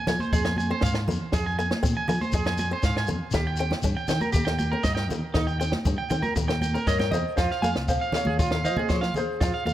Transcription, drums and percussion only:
0.07 snare medium
0.07 low conga medium
0.07 shekere medium
0.20 high conga medium
0.20 shekere soft
0.33 kick medium
0.33 shekere loud
0.45 snare medium
0.45 shekere soft
0.56 high conga medium
0.56 shekere medium
0.81 kick medium
0.81 snare medium
0.81 shekere loud
0.94 snare medium
1.08 low conga medium
1.08 shekere medium
1.32 kick medium
1.32 snare medium
1.32 shekere medium
1.59 shekere medium
1.71 snare medium
1.71 high conga medium
1.83 kick medium
1.83 low conga medium
1.83 shekere loud
2.08 low conga medium
2.08 shekere medium
2.22 high conga medium
2.22 shekere soft
2.32 kick medium
2.32 shekere loud
2.45 snare medium
2.45 shekere soft
2.58 high conga medium
2.58 shekere medium
2.83 kick medium
2.83 snare medium
2.83 shekere loud
2.96 snare medium
3.07 low conga medium
3.07 shekere medium
3.31 kick medium
3.31 snare medium
3.31 shekere loud
3.57 shekere medium
3.71 snare medium
3.71 high conga medium
3.82 kick medium
3.82 low conga medium
3.82 shekere loud
4.08 snare medium
4.08 low conga medium
4.08 shekere medium
4.20 high conga medium
4.20 shekere soft
4.33 kick medium
4.33 shekere loud
4.46 snare medium
4.46 shekere soft
4.59 high conga medium
4.59 shekere medium
4.83 kick medium
4.83 snare medium
4.83 shekere medium
4.96 snare medium
5.10 low conga medium
5.10 shekere medium
5.34 kick medium
5.34 snare medium
5.34 shekere medium
5.48 shekere soft
5.62 shekere medium
5.72 snare medium
5.72 high conga medium
5.85 kick medium
5.85 low conga medium
5.85 shekere medium
6.10 low conga medium
6.10 shekere medium
6.23 high conga medium
6.23 shekere soft
6.36 kick medium
6.36 shekere loud
6.49 snare medium
6.61 high conga medium
6.61 shekere medium
6.76 shekere soft
6.87 kick medium
6.87 snare medium
6.87 shekere medium
7.00 snare medium
7.00 high conga medium
7.12 low conga medium
7.12 shekere medium
7.37 kick medium
7.37 snare medium
7.37 shekere medium
7.51 snare soft
7.62 high conga medium
7.62 shekere medium
7.76 snare medium
7.76 shekere soft
7.88 kick medium
7.88 shekere medium
8.02 shekere soft
8.12 snare medium
8.12 low conga medium
8.12 shekere medium
8.25 high conga medium
8.38 kick medium
8.38 snare soft
8.38 shekere medium
8.51 snare medium
8.65 shekere medium
8.77 high conga medium
8.77 low conga medium
8.89 kick medium
8.89 snare medium
8.89 shekere medium
9.03 snare medium
9.14 low conga medium
9.14 shekere medium
9.41 kick medium
9.41 snare medium
9.41 shekere medium
9.65 high conga medium
9.65 shekere medium

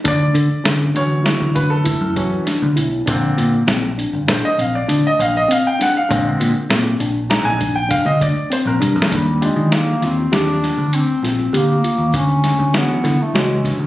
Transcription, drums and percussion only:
0.05 kick medium
0.05 closed hi-hat medium
0.35 closed hi-hat medium
0.65 snare loud
0.65 closed hi-hat medium
0.96 closed hi-hat medium
1.26 snare loud
1.26 closed hi-hat medium
1.56 kick medium
1.56 closed hi-hat medium
1.85 kick medium
1.85 closed hi-hat medium
2.16 kick medium
2.16 closed hi-hat medium
2.47 snare soft
2.47 closed hi-hat medium
2.77 closed hi-hat medium
3.07 kick loud
3.07 closed hi-hat medium
3.07 shaker medium
3.38 closed hi-hat medium
3.68 snare loud
3.68 closed hi-hat medium
3.99 closed hi-hat medium
4.28 snare medium
4.28 closed hi-hat medium
4.59 closed hi-hat medium
4.59 shaker soft
4.89 closed hi-hat medium
4.89 shaker soft
5.20 closed hi-hat medium
5.50 closed hi-hat medium
5.50 shaker soft
5.80 snare soft
5.80 closed hi-hat medium
5.80 shaker soft
6.11 kick loud
6.11 closed hi-hat medium
6.11 shaker medium
6.41 closed hi-hat medium
6.41 shaker soft
6.70 snare loud
6.70 closed hi-hat medium
6.70 shaker soft
7.00 closed hi-hat medium
7.00 shaker soft
7.31 snare loud
7.31 closed hi-hat medium
7.61 kick medium
7.61 closed hi-hat medium
7.61 shaker soft
7.90 kick loud
7.90 closed hi-hat medium
7.90 shaker soft
8.21 kick medium
8.21 closed hi-hat medium
8.52 closed hi-hat medium
8.82 closed hi-hat medium
8.82 high tom medium
9.02 snare medium
9.11 kick medium
9.11 closed hi-hat medium
9.11 shaker medium
9.42 closed hi-hat medium
9.72 snare loud
9.72 closed hi-hat medium
10.02 snare soft
10.02 closed hi-hat medium
10.33 snare loud
10.33 closed hi-hat medium
10.62 snare soft
10.62 closed hi-hat medium
10.62 shaker soft
10.93 closed hi-hat medium
11.24 snare soft
11.24 closed hi-hat medium
11.54 closed hi-hat medium
11.84 closed hi-hat medium
12.12 kick loud
12.12 closed hi-hat medium
12.12 shaker medium
12.44 snare soft
12.44 closed hi-hat medium
12.74 snare loud
12.74 closed hi-hat medium
13.05 snare soft
13.05 closed hi-hat medium
13.35 snare loud
13.35 closed hi-hat medium
13.65 kick medium
13.65 snare soft
13.65 closed hi-hat soft
13.65 shaker soft

